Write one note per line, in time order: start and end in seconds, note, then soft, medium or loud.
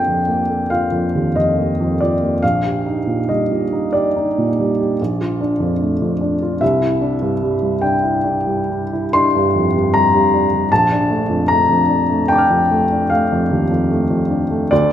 0.00 2.39 A#1 soft
0.00 0.07 F2 soft
0.00 0.28 A#3 soft
0.00 0.71 F4 soft
0.00 0.50 A4 soft
0.00 2.01 D5 soft
0.00 0.70 F5 soft
0.00 0.71 G5 medium
0.07 0.41 F2 soft
0.28 0.63 A#3 soft
0.50 0.84 A4 soft
0.70 1.06 F4 soft
0.70 1.36 F5 medium
0.92 1.27 F2 soft
1.15 1.37 D#2 soft
1.36 1.71 F2 soft
1.36 2.00 D#5 soft
1.59 1.93 A#3 soft
1.80 2.14 F2 soft
2.01 2.35 F4 soft
2.01 2.43 D5 soft
2.22 2.43 A#3 soft
2.42 4.95 A#1 soft
2.42 3.28 F5 medium
2.65 2.99 G4 soft
2.86 3.20 D#4 soft
3.07 3.42 A#2 soft
3.29 3.64 G3 soft
3.29 3.93 D#5 soft
3.51 3.85 A#2 soft
3.73 4.07 D#4 soft
3.93 4.28 G4 soft
3.93 5.39 D5 soft
4.16 4.50 D#4 soft
4.38 4.71 A#2 soft
4.60 4.92 G3 soft
4.81 5.00 G4 soft
5.01 6.58 A#1 soft
5.21 5.53 F4 soft
5.41 5.73 D4 soft
5.60 5.93 F2 soft
5.81 6.13 A3 soft
6.02 6.34 F2 soft
6.21 6.53 D4 soft
6.42 6.62 F4 soft
6.61 10.67 C2 soft
6.61 7.82 E5 medium
6.81 7.13 E4 soft
7.01 7.33 D4 soft
7.22 7.54 G2 soft
7.43 7.75 G3 soft
7.63 7.95 G2 soft
7.81 8.16 D4 soft
7.81 9.12 G5 medium
8.03 8.37 E4 soft
8.24 8.59 D4 soft
8.47 8.83 G2 soft
8.71 9.06 G3 soft
8.93 9.27 E4 soft
9.13 9.46 D4 soft
9.13 9.93 C6 medium
9.36 9.67 G2 soft
9.56 9.74 F2 soft
9.76 10.06 G2 soft
9.94 10.25 G3 soft
9.94 10.71 A#5 medium
10.14 10.44 G2 soft
10.34 10.64 D4 soft
10.53 10.71 G3 soft
10.72 14.68 A#1 soft
10.72 11.48 A5 medium
10.92 11.21 D4 soft
11.10 11.40 A3 soft
11.29 11.60 F2 soft
11.48 11.80 A3 soft
11.48 12.29 A#5 medium
11.69 12.01 F2 soft
11.88 12.21 D4 soft
12.09 12.42 A3 soft
12.28 12.62 D4 soft
12.28 13.10 G5 medium
12.28 14.67 A5 soft
12.33 12.34 D6 soft
12.33 14.70 D6 soft
12.38 14.72 F6 soft
12.50 12.83 F2 soft
12.71 13.03 A3 soft
12.91 13.23 D4 soft
13.10 13.43 A3 soft
13.10 14.70 F5 medium
13.32 13.63 F2 soft
13.51 13.70 D#2 soft
13.71 14.02 F2 soft
13.91 14.22 A3 soft
14.10 14.42 F2 soft
14.30 14.63 D4 soft
14.51 14.71 A3 soft
14.71 14.93 D2 soft
14.71 14.93 D5 medium